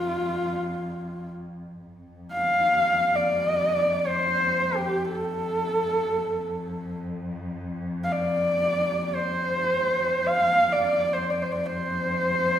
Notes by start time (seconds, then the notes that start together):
Already playing: F2 F4
1.84 F2
2.33 F5
3.16 D5
4.07 C5
4.76 G4
5.13 A4
5.79 F2
8.04 F5
8.12 D5
9.15 C5
9.69 F2
10.27 F5
10.73 D5
11.13 C5
11.30 D5
11.42 C5
11.52 D5
11.66 C5